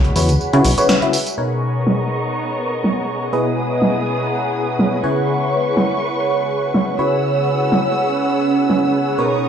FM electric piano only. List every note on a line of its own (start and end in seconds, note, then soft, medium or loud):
0.16 0.32 C#3 medium
0.16 0.32 E4 medium
0.16 0.32 F#4 medium
0.16 0.32 B4 medium
0.16 0.32 C#5 medium
0.53 0.68 C#3 medium
0.53 0.68 E4 medium
0.53 0.68 F#4 medium
0.53 0.68 B4 medium
0.53 0.68 C#5 loud
0.78 0.99 C#3 medium
0.78 0.99 E4 medium
0.78 0.99 F#4 medium
0.78 0.99 B4 medium
0.78 0.99 C#5 medium
1.02 1.17 C#3 medium
1.02 1.17 E4 medium
1.02 1.17 F#4 medium
1.02 1.17 B4 medium
1.02 1.17 E5 medium
1.38 3.30 B2 medium
1.38 3.30 D#4 medium
1.38 3.30 A#4 medium
1.38 3.30 B4 medium
1.38 3.30 C#5 medium
3.33 5.01 B2 medium
3.33 5.01 B3 medium
3.33 5.01 E4 medium
3.33 5.01 G#4 medium
3.33 5.01 B4 medium
3.33 5.01 D#5 medium
5.04 6.96 C#3 medium
5.04 6.96 E4 medium
5.04 6.96 G#4 medium
5.04 6.96 B4 medium
5.04 6.96 C#5 medium
6.99 9.16 C#3 medium
6.99 9.16 E4 medium
6.99 9.16 F#4 medium
6.99 9.16 B4 medium
6.99 9.16 C#5 medium
9.18 9.49 B2 medium
9.18 9.49 D#4 medium
9.18 9.49 A#4 medium
9.18 9.49 B4 medium
9.18 9.49 C#5 medium